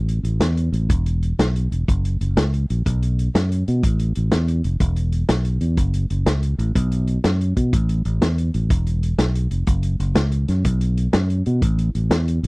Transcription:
Already playing: A1
0.09 closed hi-hat
0.23 A1, closed hi-hat
0.40 E2, snare, closed hi-hat
0.57 closed hi-hat
0.72 A1, closed hi-hat
0.89 E1, kick, closed hi-hat
1.06 closed hi-hat
1.23 closed hi-hat
1.39 B1, snare, closed hi-hat
1.56 closed hi-hat
1.72 E1, closed hi-hat
1.88 F#1, kick, closed hi-hat
2.05 closed hi-hat
2.21 F#1, closed hi-hat
2.37 C#2, snare, closed hi-hat
2.54 closed hi-hat
2.70 A#1, closed hi-hat
2.86 B1, kick, closed hi-hat
3.03 closed hi-hat
3.19 closed hi-hat
3.35 F#2, snare, closed hi-hat
3.52 closed hi-hat
3.68 B2, closed hi-hat
3.83 A1, kick, closed hi-hat
3.99 closed hi-hat
4.15 A1, closed hi-hat
4.32 E2, snare, closed hi-hat
4.48 closed hi-hat
4.64 F1, closed hi-hat
4.80 E1, kick, closed hi-hat
4.96 closed hi-hat
5.12 closed hi-hat
5.29 B1, snare, closed hi-hat
5.45 closed hi-hat
5.61 E2, closed hi-hat
5.77 F#1, kick, closed hi-hat
5.94 closed hi-hat
6.10 F#1, closed hi-hat
6.26 C#2, snare, closed hi-hat
6.43 closed hi-hat
6.58 A1, closed hi-hat
6.75 B1, kick, closed hi-hat
6.92 closed hi-hat
7.08 closed hi-hat
7.24 F#2, snare, closed hi-hat
7.41 closed hi-hat
7.57 B2, kick, closed hi-hat
7.73 A1, kick, closed hi-hat
7.89 closed hi-hat
8.05 A1, closed hi-hat
8.21 E2, snare, closed hi-hat
8.38 closed hi-hat
8.54 A1, closed hi-hat
8.70 E1, kick, closed hi-hat
8.87 closed hi-hat
9.03 closed hi-hat
9.18 B1, snare, closed hi-hat
9.35 closed hi-hat
9.51 F1, closed hi-hat
9.67 F#1, kick, closed hi-hat
9.83 closed hi-hat
10.00 F#1, closed hi-hat
10.15 C#2, snare, closed hi-hat
10.32 closed hi-hat
10.48 F#2, snare, closed hi-hat
10.65 B1, kick, closed hi-hat
10.81 closed hi-hat
10.98 closed hi-hat
11.13 F#2, snare, closed hi-hat
11.30 closed hi-hat
11.46 B2, closed hi-hat
11.62 A1, kick, closed hi-hat
11.79 closed hi-hat
11.95 A1, closed hi-hat
12.10 E2, snare, closed hi-hat
12.28 closed hi-hat
12.43 A1, closed hi-hat

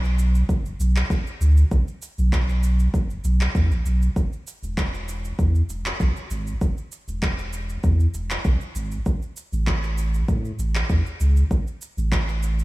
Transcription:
Already playing: B1
0.05 cabasa
0.19 cabasa
0.35 cabasa
0.49 F#1, kick, cabasa
0.66 cabasa
0.80 B1, cabasa
0.96 clap, cabasa
1.10 F#1, kick, cabasa
1.27 cabasa
1.41 D2, cabasa
1.57 cabasa
1.71 B1, kick, cabasa
1.88 cabasa
2.02 cabasa
2.18 B1, cabasa
2.33 kick, clap, cabasa
2.49 cabasa
2.63 cabasa
2.80 cabasa
2.94 F#1, kick, cabasa
3.10 cabasa
3.24 B1, cabasa
3.41 clap, cabasa
3.55 E2, kick, cabasa
3.71 A1, cabasa
3.85 B1, cabasa
4.02 cabasa
4.16 E1, kick, cabasa
4.33 cabasa
4.47 cabasa
4.63 E1, cabasa
4.78 kick, clap, cabasa
4.94 cabasa
5.09 cabasa
5.25 cabasa
5.39 E2, kick, cabasa
5.55 cabasa
5.69 E1, cabasa
5.86 clap, cabasa
6.00 B1, kick, cabasa
6.16 cabasa
6.30 G#1, cabasa
6.47 cabasa
6.61 E1, kick, cabasa
6.78 cabasa
6.92 cabasa
7.08 E1, cabasa
7.23 kick, clap, cabasa
7.39 cabasa
7.53 cabasa
7.70 cabasa
7.84 E2, kick, cabasa
8.00 cabasa
8.14 E1, cabasa
8.31 clap, cabasa
8.45 B1, kick, cabasa
8.61 cabasa
8.75 G#1, cabasa
8.92 cabasa
9.06 A1, kick, cabasa
9.22 cabasa
9.37 cabasa
9.52 A1, cabasa
9.67 kick, clap, cabasa
9.83 cabasa
9.98 cabasa
10.14 cabasa
10.28 A2, kick, cabasa
10.45 cabasa
10.59 A1, cabasa
10.75 clap, cabasa
10.90 E2, kick, cabasa
11.06 cabasa
11.20 C#2, cabasa
11.37 cabasa
11.51 A1, kick, cabasa
11.67 cabasa
11.82 cabasa
11.97 A1, cabasa
12.12 kick, clap, cabasa
12.29 cabasa
12.43 cabasa
12.59 cabasa

